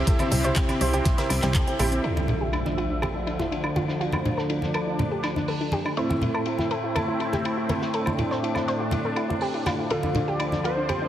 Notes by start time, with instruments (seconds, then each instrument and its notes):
Already playing: supersaw synth C3 C4 E4 G4
0.07 grand piano C3 C4 E4 G4 C5 E5, synth pluck A4, kick, closed hi-hat, ride
0.19 grand piano C3 C4 E4 G4 C5 E5, synth pluck C4, closed hi-hat, high conga, high woodblock
0.31 analog synth bass C2, synth pluck C4, open hi-hat, ride, low conga
0.44 grand piano C3 C4 E4 G4 C5 E5, synth pluck C5, closed hi-hat, high woodblock
0.55 grand piano C3 C4 E4 G4 C5 G5, synth pluck C4, kick, snare, clap, closed hi-hat, ride
0.69 synth pluck C4, snare, closed hi-hat, high conga, high woodblock
0.81 analog synth bass C2, grand piano C3 C4 E4 G4 C5 E5, synth pluck C5, open hi-hat, ride
0.93 grand piano C3 C4 E4 G4 C5 G5, synth pluck C4, closed hi-hat, high woodblock
1.05 grand piano C3 C4 E4 G4 C5 E5, synth pluck C4, kick, snare, closed hi-hat, ride, high conga, low conga
1.18 grand piano C3 C4 E4 G4 C5 E5, synth pluck A#4, snare, closed hi-hat, ride
1.30 analog synth bass C2, synth pluck C4, snare, open hi-hat, ride, high woodblock
1.42 analog synth bass C2, grand piano C3 C4 E4 G4 C5 G5, synth pluck C4, snare, clap, closed hi-hat, ride, high conga
1.54 synth pluck A4, kick, clap, closed hi-hat, ride, high woodblock
1.67 grand piano C3 C4 E4 G4 C5 G5, synth pluck C4, closed hi-hat
1.79 analog synth bass A#1, grand piano C4 E4 G4 C5 E5, synth pluck G4, open hi-hat, ride, high conga, high woodblock
1.92 synth pluck C4, closed hi-hat
2.04 supersaw synth D2 D3 F3 E5, grand piano D3 E4 F4 A4 D5 E5, synth pluck A4, ride, impact
2.16 synth pluck D4, high conga, high woodblock
2.28 synth pluck D4, ride, low conga
2.41 synth pluck G4
2.53 synth pluck D4, ride, high woodblock
2.65 synth pluck D4, snare, high conga
2.78 synth pluck F4, ride, high woodblock
2.90 synth pluck D4
3.02 synth pluck G4, ride, high conga, high woodblock
3.15 synth pluck D4
3.27 synth pluck D4, ride, high woodblock
3.39 synth pluck E4, snare, high conga
3.51 synth pluck D4, ride
3.64 synth pluck D4, high woodblock
3.76 synth pluck F4, ride, high conga
3.88 synth pluck D4, snare, high woodblock
4.01 supersaw synth D4, synth pluck F4, ride
4.12 synth pluck D4, high conga, high woodblock
4.25 synth pluck D4, ride, low conga
4.37 synth pluck A4, snare, high woodblock
4.50 synth pluck D4, ride
4.62 synth pluck D4, snare, high conga
4.74 synth pluck A4, ride, high woodblock
4.87 synth pluck D4
4.99 synth pluck D4, ride, high conga, low conga, high woodblock
5.12 synth pluck G4
5.23 synth pluck D4, snare, ride, high woodblock
5.36 synth pluck D4, snare, high conga
5.48 synth pluck A4, open hi-hat, high woodblock
5.61 synth pluck D4, ride
5.72 synth pluck G4, ride, high conga
5.85 synth pluck D4, high woodblock
5.97 grand piano A2 C4 E4 A4 C5 E5, supersaw synth A2 A3 C4 E4, synth pluck C5, ride
6.09 synth pluck E4, high conga, high woodblock
6.22 synth pluck E4, ride, low conga
6.34 synth pluck A4, high woodblock
6.46 synth pluck E4, ride
6.58 synth pluck E4, snare, high conga, high woodblock
6.71 synth pluck A4, ride
6.84 synth pluck E4
6.95 synth pluck A4, ride, high conga, high woodblock
7.08 synth pluck E4
7.20 synth pluck E4, ride, high woodblock
7.32 synth pluck G4, snare, high conga
7.45 synth pluck E4, ride, high woodblock
7.57 synth pluck E4
7.69 synth pluck A4, ride, high conga, high woodblock
7.81 synth pluck E4, snare
7.94 supersaw synth D4, synth pluck A4, ride
8.06 synth pluck E4, high conga, high woodblock
8.19 synth pluck E4, ride, low conga
8.31 synth pluck C5, snare, high woodblock
8.43 synth pluck E4, ride
8.55 synth pluck E4, snare, high conga, high woodblock
8.67 synth pluck C5, snare, ride
8.80 synth pluck E4, high woodblock
8.91 synth pluck E4, ride, high conga, low conga
9.05 synth pluck A4
9.16 synth pluck E4, ride, high woodblock
9.30 synth pluck E4, high conga
9.41 synth pluck G4, open hi-hat, high woodblock
9.54 synth pluck E4, ride
9.66 synth pluck F4, snare, ride, high conga, high woodblock
9.79 synth pluck E4
9.90 supersaw synth D2 D3 F3 D5, grand piano D3 D4 F4 A4 D5 F5, synth pluck A4, ride
10.03 synth pluck D4, high conga, high woodblock
10.15 synth pluck D4, ride, low conga
10.28 synth pluck G4
10.40 synth pluck D4, ride, high woodblock
10.52 synth pluck D4, snare, high conga
10.63 synth pluck F4, analog synth lead C5, ride, high woodblock
10.77 synth pluck D4
10.89 synth pluck G4, ride, high conga, high woodblock
11.02 synth pluck D4